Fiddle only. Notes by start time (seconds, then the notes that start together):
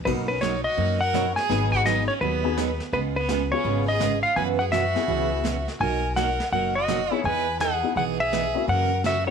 0.07 D#4
0.29 C#4
0.42 D#4
0.65 F#4
1.00 A#4
1.37 G#4
1.73 F#4
1.85 D#4
2.09 C#4
2.21 B3
2.93 B3
3.16 B3
3.51 C#4
3.87 G#4
4.24 F4
4.37 B4
4.60 G#4
4.72 F#4
5.81 A#4
6.16 A#4
6.52 A#4
6.76 F#4
7.26 B4
7.61 G#4
7.97 G#4
8.20 G#4
8.69 A#4
9.05 F#4